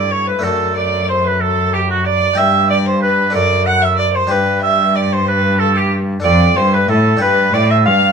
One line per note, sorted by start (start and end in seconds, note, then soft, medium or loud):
0.00 0.40 G2 medium
0.00 0.38 A3 soft
0.00 0.40 E4 soft
0.00 0.41 A4 soft
0.00 0.13 D5 medium
0.11 0.29 C#5 medium
0.11 0.28 C#5 medium
0.27 0.44 B4 medium
0.27 0.45 B4 medium
0.39 2.32 A3 medium
0.39 2.33 D4 soft
0.39 2.33 A4 soft
0.43 2.34 F#2 medium
0.43 0.76 A4 medium
0.76 1.10 D5 medium
0.76 1.08 D5 medium
1.09 1.26 C5 medium
1.09 1.28 C5 medium
1.24 1.41 B4 medium
1.24 1.42 B4 medium
1.41 1.75 A4 medium
1.41 1.76 A4 medium
1.73 1.90 G4 medium
1.90 2.06 F#4 medium
1.90 2.07 F#4 medium
2.05 2.39 D5 loud
2.05 2.40 D5 medium
2.34 3.29 D4 medium
2.34 3.30 G4 medium
2.38 3.31 G2 medium
2.38 3.37 G2 medium
2.38 2.69 E5 loud
2.38 2.70 E5 medium
2.70 2.77 D5 loud
2.70 2.88 D5 medium
2.86 3.02 C5 medium
2.86 3.01 C5 medium
3.02 3.34 B4 medium
3.30 4.26 D4 soft
3.30 4.27 A4 soft
3.34 4.27 F#2 medium
3.34 4.31 F#2 medium
3.34 3.66 D5 medium
3.34 3.68 D5 medium
3.66 3.83 F#5 medium
3.66 3.86 F#5 medium
3.82 3.97 E5 medium
3.82 3.98 E5 medium
3.97 4.13 D5 medium
3.97 4.17 D5 loud
4.13 4.32 C5 medium
4.27 6.18 D4 medium
4.27 6.19 G4 soft
4.27 4.61 B4 medium
4.27 4.62 B4 medium
4.31 6.21 G2 medium
4.62 4.97 E5 medium
4.62 4.97 E5 loud
4.96 5.15 D5 medium
4.96 5.14 D5 medium
5.12 5.30 C5 medium
5.12 5.27 C5 medium
5.28 5.61 B4 medium
5.28 5.59 B4 medium
5.59 5.75 A4 medium
5.59 5.79 A4 medium
5.75 5.91 G4 medium
5.75 5.93 G4 medium
6.20 7.16 D4 medium
6.20 7.17 A4 medium
6.20 6.58 D5 loud
6.24 6.54 F2 medium
6.24 6.55 F2 medium
6.24 6.59 D5 medium
6.56 6.86 G2 medium
6.56 6.89 G2 medium
6.56 6.75 C5 loud
6.56 6.75 C5 medium
6.73 6.92 B4 medium
6.73 6.89 B4 medium
6.89 7.18 A2 medium
6.89 7.21 A2 medium
6.89 7.21 A4 medium
7.17 7.50 D4 medium
7.17 8.12 G4 medium
7.21 7.53 G2 medium
7.21 7.51 G2 medium
7.21 7.55 B4 loud
7.21 7.56 B4 medium
7.53 7.88 A2 medium
7.53 7.83 A2 medium
7.53 7.73 D5 loud
7.53 7.70 D5 medium
7.70 7.77 E5 medium
7.70 7.85 E5 loud
7.85 8.12 G2 medium
7.85 8.12 F5 loud
7.85 8.12 F5 medium